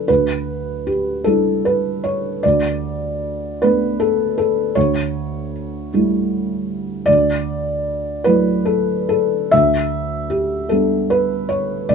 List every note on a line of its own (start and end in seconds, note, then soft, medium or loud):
0.00 0.10 A4 medium
0.00 0.08 B4 medium
0.08 1.23 D2 soft
0.08 0.87 B4 medium
0.87 1.26 G4 medium
1.24 2.39 G3 soft
1.24 2.40 D4 soft
1.24 2.40 E4 soft
1.24 1.64 A4 medium
1.65 2.04 B4 medium
2.04 2.43 C#5 medium
2.43 3.58 D2 medium
2.43 3.61 D5 medium
3.62 4.73 A3 soft
3.62 4.73 B3 soft
3.62 4.73 D4 soft
3.62 4.00 B4 medium
4.00 4.36 A4 medium
4.38 4.76 A4 medium
4.75 5.88 D2 medium
4.75 5.52 C#5 medium
5.94 7.05 G3 soft
5.94 7.05 A3 soft
5.94 7.05 E4 soft
7.06 8.22 D2 medium
7.06 8.24 D5 medium
8.24 9.48 F#3 soft
8.24 9.48 A3 soft
8.24 9.48 E4 soft
8.24 8.66 B4 medium
8.65 9.07 A4 medium
9.09 9.51 A4 medium
9.51 10.67 D2 medium
9.51 10.31 E5 medium
10.30 10.69 G4 medium
10.69 11.85 G3 soft
10.69 11.85 B3 soft
10.69 11.85 D4 soft
10.69 11.09 A4 medium
11.10 11.49 B4 medium
11.49 11.88 C#5 medium
11.89 11.95 D2 soft
11.89 11.95 D5 medium